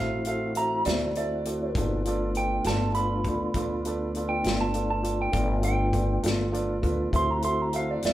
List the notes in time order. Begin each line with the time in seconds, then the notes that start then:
Already playing: A1 A3 C4 E4 F#4 A4 C5 E5 F5
0.25 F#4 A4 C5 E5 F5, closed hi-hat
0.55 F#4 A4 C5 E5 A#5, closed hi-hat
0.85 D2 F#4 A4 C5 D5 E5, snare, closed hi-hat
1.15 F#4 A4 C5 D5 E5, closed hi-hat
1.45 F#4 A4 C5 D5, closed hi-hat
1.75 G1 A#3 C4 D#4 F4 F#4 A4 B4 D5, kick, closed hi-hat
2.05 A3 B3 D4 F4 A4 B4 D5, closed hi-hat
2.35 F4 A4 B4 D5 G5, closed hi-hat
2.64 G1 F4 A4 B4 D5 A5, snare, closed hi-hat
2.95 F4 A4 B4 D5 B5, closed hi-hat
3.24 D2 F4 A4 B4 D5, kick, closed hi-hat
3.54 D2 F4 A4 B4 D5, kick, closed hi-hat
3.85 F4 A4 B4 D5, closed hi-hat
4.15 F4 A4 B4 D5, closed hi-hat
4.29 G5
4.44 G1 F4 A4 B4 D5, snare, closed hi-hat
4.61 A5
4.74 F4 A4 B4 D5, closed hi-hat
4.90 A5
5.03 F4 A4 B4 D5, closed hi-hat
5.22 G5
5.32 G1 A3 B3 D4 F4 A4 B4 D5, kick, closed hi-hat
5.62 F4 A4 B4 D5 G5, closed hi-hat
5.92 F4 A4 B4 D5, kick, closed hi-hat
6.23 G1 F4 A4 B4 D5, snare, closed hi-hat
6.52 F4 A4 B4 D5, closed hi-hat
6.82 D2 F4 A4 B4 D5, kick, closed hi-hat
7.12 D2 A3 C4 E4 F#4 A4 C5 E5 C6, kick, closed hi-hat
7.31 A#5
7.42 F#4 A4 C5 E5 C6, closed hi-hat
7.62 A#5
7.72 F#4 A4 C5 E5 F5, closed hi-hat
7.91 D5
8.02 D2 F#4 A4 C5 D5 E5, snare, closed hi-hat